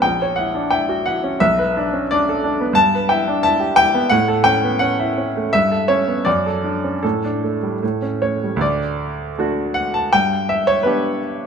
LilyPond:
\new Staff \with { instrumentName = "Grand piano" } { \time 2/4 \key d \major \tempo 4 = 85 << { g''8 fis''8 g''8 fis''8 | e''4 d''8 r8 | a''8 g''8 a''8 g''8 | fis''8 g''8 fis''4 |
e''8 cis''8 d''4 | a'4. cis''8 | d''4. fis''16 a''16 | g''8 e''16 cis''16 b'8 r8 | } \\ { ais,,16 cis''16 e'16 d'16 e'16 fis'16 e'16 cis'16 | b,,16 b'16 d'16 cis'16 d'16 a'16 d'16 b16 | g,16 b'16 e'16 d'16 e'16 g'16 e'16 b16 | a,16 a'16 cis'16 b16 cis'16 e'16 cis'16 a16 |
g,16 a'16 cis'16 b16 fis,16 a'16 d'16 cis'16 | a,16 d'16 a16 g16 a,16 cis'16 a16 g16 | d,4 <a d' fis'>4 | g,4 <b d' g'>4 | } >> }